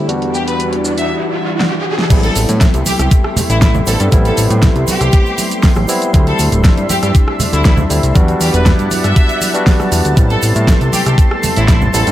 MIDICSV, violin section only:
0, 0, Header, 1, 2, 480
1, 0, Start_track
1, 0, Tempo, 504202
1, 86, Time_signature, 4, 2, 24, 8
1, 11535, End_track
2, 0, Start_track
2, 0, Title_t, "Violin section"
2, 0, Program_c, 0, 48
2, 325, Note_on_c, 0, 67, 83
2, 424, Note_off_c, 0, 67, 0
2, 454, Note_on_c, 0, 71, 85
2, 557, Note_off_c, 0, 71, 0
2, 928, Note_on_c, 0, 76, 83
2, 1045, Note_off_c, 0, 76, 0
2, 2126, Note_on_c, 0, 69, 91
2, 2233, Note_off_c, 0, 69, 0
2, 2729, Note_on_c, 0, 67, 93
2, 2806, Note_off_c, 0, 67, 0
2, 2849, Note_on_c, 0, 67, 75
2, 2923, Note_off_c, 0, 67, 0
2, 3329, Note_on_c, 0, 64, 90
2, 3403, Note_off_c, 0, 64, 0
2, 3446, Note_on_c, 0, 64, 76
2, 3525, Note_off_c, 0, 64, 0
2, 3686, Note_on_c, 0, 69, 90
2, 3797, Note_off_c, 0, 69, 0
2, 4057, Note_on_c, 0, 69, 91
2, 4158, Note_off_c, 0, 69, 0
2, 4649, Note_on_c, 0, 67, 98
2, 5321, Note_off_c, 0, 67, 0
2, 5970, Note_on_c, 0, 69, 91
2, 6075, Note_off_c, 0, 69, 0
2, 6564, Note_on_c, 0, 67, 93
2, 6644, Note_off_c, 0, 67, 0
2, 6688, Note_on_c, 0, 67, 78
2, 6763, Note_off_c, 0, 67, 0
2, 7168, Note_on_c, 0, 64, 88
2, 7243, Note_off_c, 0, 64, 0
2, 7287, Note_on_c, 0, 64, 76
2, 7365, Note_off_c, 0, 64, 0
2, 8011, Note_on_c, 0, 67, 89
2, 8107, Note_off_c, 0, 67, 0
2, 8129, Note_on_c, 0, 71, 92
2, 8234, Note_off_c, 0, 71, 0
2, 8607, Note_on_c, 0, 76, 93
2, 9088, Note_off_c, 0, 76, 0
2, 9807, Note_on_c, 0, 69, 93
2, 9913, Note_off_c, 0, 69, 0
2, 10402, Note_on_c, 0, 67, 90
2, 10483, Note_off_c, 0, 67, 0
2, 10526, Note_on_c, 0, 67, 76
2, 10602, Note_off_c, 0, 67, 0
2, 11007, Note_on_c, 0, 64, 90
2, 11082, Note_off_c, 0, 64, 0
2, 11119, Note_on_c, 0, 64, 77
2, 11202, Note_off_c, 0, 64, 0
2, 11361, Note_on_c, 0, 69, 92
2, 11475, Note_off_c, 0, 69, 0
2, 11535, End_track
0, 0, End_of_file